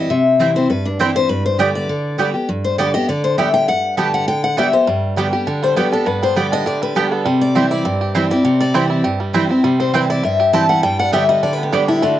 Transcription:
Already playing: steel-string acoustic guitar D#5
0.10 steel-string acoustic guitar C3 E5
0.39 steel-string acoustic guitar E3 G3 C4 E4, mandolin C4 E4 C5 G5
0.56 steel-string acoustic guitar C4 E4 C5
0.70 steel-string acoustic guitar G2 B4
0.85 steel-string acoustic guitar D4
0.99 steel-string acoustic guitar E3 G3 C4 E4 G4, mandolin C4 E4 C5 G5
1.16 steel-string acoustic guitar C5
1.29 steel-string acoustic guitar G2 B4
1.46 steel-string acoustic guitar C5
1.58 steel-string acoustic guitar D3 G3 B3 G4 D5, mandolin B3 G4 D5 G5
1.75 steel-string acoustic guitar D5
1.89 steel-string acoustic guitar D3
2.18 steel-string acoustic guitar D3 G3 B3 G4, mandolin B3 G4 D5 G5
2.34 steel-string acoustic guitar B3 G4
2.49 steel-string acoustic guitar G2
2.65 steel-string acoustic guitar C5
2.78 steel-string acoustic guitar D3 G3 B3 G4 D5, mandolin B3 G4 D5 G5
2.94 steel-string acoustic guitar B3 G4 D#5
3.09 steel-string acoustic guitar D3 D5
3.24 steel-string acoustic guitar C5
3.38 steel-string acoustic guitar D3 G3 B3 G4 E5, mandolin B3 G4 D5 G5
3.54 steel-string acoustic guitar G5
3.68 steel-string acoustic guitar G2 F#5
3.97 steel-string acoustic guitar D3 G3 B3 G4 A5, mandolin B3 G4 D5 G5
4.14 steel-string acoustic guitar F#5
4.28 steel-string acoustic guitar D3 G5
4.44 steel-string acoustic guitar F#5
4.57 steel-string acoustic guitar D3 G3 B3 G4 E5, mandolin B3 G4 D5 G5
4.73 steel-string acoustic guitar B3 G4 C5
4.87 steel-string acoustic guitar G2, five-string banjo G3
5.16 steel-string acoustic guitar D3 G3 B3 G4, five-string banjo G3, mandolin B3 G4 D5 G5
5.33 steel-string acoustic guitar B3 G4, five-string banjo G4
5.47 steel-string acoustic guitar D3, five-string banjo D4
5.63 five-string banjo G3, steel-string acoustic guitar C5
5.76 steel-string acoustic guitar D3 G3 B3 G4 B4, mandolin B3 G4 D5 G5, five-string banjo B3
5.92 steel-string acoustic guitar B3 G4 A4, five-string banjo D4
6.06 steel-string acoustic guitar G2 B4, five-string banjo B3
6.23 five-string banjo G3, steel-string acoustic guitar C5
6.35 steel-string acoustic guitar D3 G3 B3 G4 D5, mandolin B3 G4 D5 G5, five-string banjo B3
6.52 five-string banjo D4, steel-string acoustic guitar D#5
6.66 steel-string acoustic guitar D3 D5, five-string banjo G4
6.82 five-string banjo G3, steel-string acoustic guitar B4
6.95 steel-string acoustic guitar D3 G3 B3 G4, mandolin B3 G4 D5 G5, five-string banjo D4
7.12 five-string banjo B3, steel-string acoustic guitar A4
7.25 steel-string acoustic guitar C3, five-string banjo G3
7.41 steel-string acoustic guitar D5
7.55 steel-string acoustic guitar E3 G3 C4 E4, mandolin C4 E4 C5 G5, five-string banjo G4
7.71 five-string banjo E4, steel-string acoustic guitar D5
7.85 steel-string acoustic guitar G2, five-string banjo C4
8.01 five-string banjo G4
8.15 steel-string acoustic guitar E3 G3 C4 E4, mandolin C4 E4 C5 G5, five-string banjo E4
8.31 five-string banjo G3, steel-string acoustic guitar C4 E4 D5
8.45 steel-string acoustic guitar C3, five-string banjo C4
8.61 five-string banjo G3, steel-string acoustic guitar D5
8.74 steel-string acoustic guitar E3 G3 C4 E4, mandolin C4 E4 C5 G5, five-string banjo C4
8.90 five-string banjo E4
9.04 steel-string acoustic guitar G2, five-string banjo G4
9.20 five-string banjo G3
9.33 steel-string acoustic guitar E3 G3 C4 E4, mandolin C4 E4 C5 G5, five-string banjo E4
9.49 five-string banjo C4, steel-string acoustic guitar C4 E4
9.64 steel-string acoustic guitar C3, five-string banjo G3
9.80 five-string banjo C4, steel-string acoustic guitar C5
9.93 steel-string acoustic guitar E3 G3 C4 E4 B4, mandolin C4 E4 C5 G5, five-string banjo G4
10.10 five-string banjo E4, steel-string acoustic guitar D5
10.23 steel-string acoustic guitar G2 E5, five-string banjo C4
10.40 five-string banjo G4
10.53 steel-string acoustic guitar E3 G3 C4 E4 A5, mandolin C4 E4 C5 G5, five-string banjo E4
10.69 five-string banjo G3, steel-string acoustic guitar F#5
10.83 steel-string acoustic guitar G2 G5, five-string banjo G3
10.99 five-string banjo D4, steel-string acoustic guitar F#5
11.12 steel-string acoustic guitar D3 G3 B3 G4 E5, mandolin B3 G4 D5 G5, five-string banjo G4
11.29 five-string banjo G3, steel-string acoustic guitar D#5
11.43 steel-string acoustic guitar D3 D5, five-string banjo D4
11.53 steel-string acoustic guitar B4
11.58 five-string banjo B3
11.63 steel-string acoustic guitar G4
11.72 steel-string acoustic guitar D3 G3 B3 D4 G4, five-string banjo G3, mandolin B3 G4 D5 G5
11.88 five-string banjo D4, steel-string acoustic guitar E4
12.02 steel-string acoustic guitar D3 F#4, five-string banjo A3

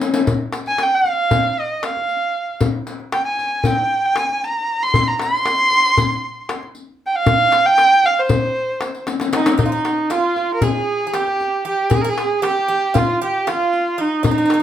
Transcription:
0.01 riq
0.14 riq
0.27 riq, darbuka dum
0.53 riq, darbuka tek
0.66 kamancheh G#5, riq, darbuka ka
0.78 riq, darbuka tek
0.83 kamancheh G5
0.95 kamancheh F5
1.04 riq, darbuka ka
1.31 riq, darbuka dum
1.59 kamancheh D#5
1.83 kamancheh F5, riq, darbuka tek
1.97 darbuka ka
2.09 riq
2.60 riq, darbuka dum
2.87 riq
3.00 darbuka ka
3.12 kamancheh G5, riq, darbuka tek
3.24 kamancheh G#5
3.39 riq, darbuka ka
3.64 kamancheh G5, riq, darbuka dum
4.04 kamancheh G#5
4.16 riq, darbuka tek
4.29 darbuka ka
4.44 kamancheh A#5, riq
4.83 kamancheh C6
4.94 riq, darbuka dum
5.07 kamancheh A#5
5.19 kamancheh C6, riq, darbuka tek
5.32 riq, darbuka ka
5.46 riq, darbuka tek
5.72 riq, darbuka ka
5.98 riq, darbuka dum
6.49 riq, darbuka tek
6.63 darbuka ka
6.75 riq
7.07 kamancheh G5
7.16 kamancheh F5
7.26 riq, darbuka dum
7.52 riq, darbuka tek
7.66 kamancheh G5
7.78 riq, darbuka tek
8.03 kamancheh F5, riq, darbuka ka
8.19 kamancheh C5
8.29 riq, darbuka dum
8.81 riq, darbuka tek
8.95 riq
9.07 riq, darbuka tek
9.20 riq, darbuka ka
9.33 bouzouki D#4, kamancheh D#4, riq, darbuka tek
9.46 riq, darbuka ka
9.58 bouzouki D#4, kamancheh D#4, riq, darbuka dum
9.66 bouzouki F4
9.72 bouzouki D#4
9.85 riq, darbuka tek
9.98 darbuka ka
10.10 bouzouki F4, kamancheh F4, riq, darbuka tek
10.36 riq, darbuka ka
10.54 kamancheh A#4
10.62 bouzouki G#4, kamancheh G#4, riq, darbuka dum
11.07 bouzouki G#4
11.14 bouzouki G4, kamancheh G4, riq, darbuka tek
11.28 darbuka ka
11.40 riq, darbuka ka
11.65 bouzouki G4, kamancheh G4
11.90 bouzouki G#4, riq, darbuka dum
11.95 kamancheh G#4
12.01 bouzouki G#4, kamancheh A#4
12.09 kamancheh G#4
12.18 riq, darbuka tek
12.31 darbuka ka
12.42 bouzouki G4, kamancheh G4, riq, darbuka tek
12.68 bouzouki G4, riq, darbuka ka
12.94 bouzouki F4, kamancheh F4, riq, darbuka dum
13.22 bouzouki G4, kamancheh G4
13.47 bouzouki F4, kamancheh F4, riq, darbuka tek
13.60 darbuka ka
13.73 riq
13.98 bouzouki D#4, kamancheh D#4
14.23 bouzouki D#4, kamancheh D#4, riq, darbuka dum
14.31 bouzouki D#4
14.38 bouzouki D#4
14.46 bouzouki D#4
14.50 bouzouki D#4, riq, darbuka tek
14.60 bouzouki D#4

